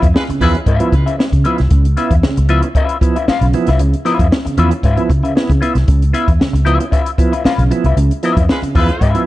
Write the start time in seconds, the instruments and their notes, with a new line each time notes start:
0.02 fingered electric bass F2, tonewheel organ B3 E4, kick, closed hi-hat
0.14 horn section G#3 F4 B4, tonewheel organ B3 E4, muted clean electric guitar stroke, snare
0.28 tonewheel organ C#3, muted fingered electric bass stroke, muted clean electric guitar stroke, closed hi-hat
0.40 fingered electric bass E2, tonewheel organ F3 B3 E4, horn section G#3 F4 B4, clean electric guitar C#4 F4 B4 E5, kick, open hi-hat
0.55 muted clean electric guitar stroke, closed hi-hat
0.66 fingered electric bass G#2, clean electric guitar C#4 F4 B4 E5, kick, closed hi-hat
0.80 tonewheel organ F3 B3 E4, closed hi-hat
0.92 fingered electric bass C#3, muted clean electric guitar stroke, kick, closed hi-hat
1.06 tonewheel organ C#3, clean electric guitar C#4 F4 B4 E5, closed hi-hat
1.18 tonewheel organ B3 E4, muted clean electric guitar stroke, snare
1.32 fingered electric bass C#3, tonewheel organ C#3, kick, closed hi-hat
1.44 tonewheel organ F3 B3 E4, clean electric guitar C#4 F4 B4 E5, closed hi-hat
1.58 fingered electric bass C2, muted clean electric guitar stroke, snare, closed hi-hat
1.71 fingered electric bass C#2, tonewheel organ C#3, kick, closed hi-hat
1.85 closed hi-hat
1.97 tonewheel organ B3 E4, clean electric guitar C#4 F4 B4 E5, closed hi-hat
2.11 fingered electric bass E2, kick, closed hi-hat
2.23 tonewheel organ C#3, muted clean electric guitar stroke, muted fingered electric bass stroke, snare
2.37 fingered electric bass C#2, muted clean electric guitar stroke, closed hi-hat
2.49 tonewheel organ F3 B3 E4, clean electric guitar C#4 F4 B4 E5, closed hi-hat
2.62 tonewheel organ B3 E4, muted clean electric guitar stroke, closed hi-hat
2.75 clean electric guitar C#4 F4 B4 E5, kick, closed hi-hat
2.89 closed hi-hat
3.01 tonewheel organ F3 B3 E4, muted clean electric guitar stroke, kick, closed hi-hat
3.16 clean electric guitar C#4 F4 B4 E5, closed hi-hat
3.28 tonewheel organ B3 E4, clean electric guitar C#4 F4 B4 F5, muted fingered electric bass stroke, snare
3.41 fingered electric bass B1, tonewheel organ C#3, closed hi-hat
3.53 tonewheel organ F3 B3 E4, muted clean electric guitar stroke, closed hi-hat
3.67 fingered electric bass C2, clean electric guitar C#4 F4 B4 E5, snare, closed hi-hat
3.79 fingered electric bass C#2, tonewheel organ C#3, closed hi-hat
3.93 closed hi-hat
4.05 tonewheel organ F3 B3 E4, clean electric guitar C#4 F4 B4 E5, snare, closed hi-hat
4.19 fingered electric bass F2, tonewheel organ B3 E4, kick, closed hi-hat
4.32 tonewheel organ B3 E4, muted clean electric guitar stroke, snare
4.45 tonewheel organ C#3, muted clean electric guitar stroke, muted fingered electric bass stroke, closed hi-hat
4.57 fingered electric bass E2, tonewheel organ F3 B3 E4, clean electric guitar C#4 F4 B4 E5, closed hi-hat
4.71 muted clean electric guitar stroke, closed hi-hat
4.83 fingered electric bass G#2, clean electric guitar C#4 F4 B4 E5, kick, closed hi-hat
4.97 tonewheel organ F3 B3 E4, closed hi-hat
5.09 fingered electric bass C#3, muted clean electric guitar stroke, kick, closed hi-hat
5.23 tonewheel organ C#3, clean electric guitar C#4 F4 B4 E5, closed hi-hat
5.35 tonewheel organ B3 E4, muted clean electric guitar stroke, snare
5.50 fingered electric bass C#3, tonewheel organ C#3, kick, closed hi-hat
5.61 tonewheel organ B3 E4, clean electric guitar C#4 F4 B4 E5, closed hi-hat
5.75 fingered electric bass C2, muted clean electric guitar stroke, snare, closed hi-hat
5.88 fingered electric bass C#2, tonewheel organ C#3, kick, closed hi-hat
6.02 closed hi-hat
6.13 tonewheel organ B3 E4, clean electric guitar C#4 F4 B4 E5, closed hi-hat
6.28 fingered electric bass E2, kick, closed hi-hat
6.40 tonewheel organ C#3, muted fingered electric bass stroke, muted clean electric guitar stroke, snare
6.53 fingered electric bass C#2, muted clean electric guitar stroke, closed hi-hat
6.65 tonewheel organ F3 B3 E4, clean electric guitar C#4 F4 B4 E5, closed hi-hat
6.80 tonewheel organ B3 E4, muted clean electric guitar stroke, closed hi-hat
6.91 clean electric guitar C#4 F4 B4 E5, kick, closed hi-hat
7.06 closed hi-hat
7.18 tonewheel organ F3 B3 E4, muted clean electric guitar stroke, kick, closed hi-hat
7.32 clean electric guitar C#4 F4 B4 E5, closed hi-hat
7.44 tonewheel organ B3 E4, clean electric guitar C#4 F4 B4 F5, muted fingered electric bass stroke, snare
7.58 fingered electric bass B1, tonewheel organ C#3, closed hi-hat
7.71 tonewheel organ F3 B3 E4, muted clean electric guitar stroke, closed hi-hat
7.84 fingered electric bass C2, clean electric guitar C#4 F4 B4 E5, closed hi-hat
7.97 fingered electric bass C#2, tonewheel organ C#3, closed hi-hat
8.11 closed hi-hat
8.23 tonewheel organ F3 B3 E4, clean electric guitar C#4 F4 B4 E5, snare, closed hi-hat
8.37 fingered electric bass F2, tonewheel organ B3 E4, kick, closed hi-hat
8.49 horn section G#3 F4 B4, tonewheel organ B3 E4, muted clean electric guitar stroke, snare
8.62 tonewheel organ C#3, muted fingered electric bass stroke, muted clean electric guitar stroke, closed hi-hat
8.75 fingered electric bass E2, tonewheel organ F3 B3 E4, horn section G#3 F4 B4, clean electric guitar C#4 F4 B4 E5, kick, open hi-hat
8.89 muted clean electric guitar stroke, closed hi-hat
9.01 fingered electric bass G#2, clean electric guitar C#4 F4 B4 E5, kick, closed hi-hat
9.15 tonewheel organ F3 B3 E4, closed hi-hat